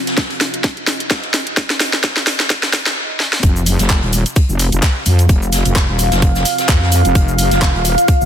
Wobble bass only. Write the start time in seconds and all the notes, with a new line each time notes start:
3.43 F1
3.79 F1
4.03 D#1
4.49 F1
4.72 F1
5.06 F2
5.29 F1
5.65 F1
5.89 D#1
6.12 F1
6.69 F2
7.05 F1
7.15 F1
7.51 F1
7.75 D#1
8.21 F1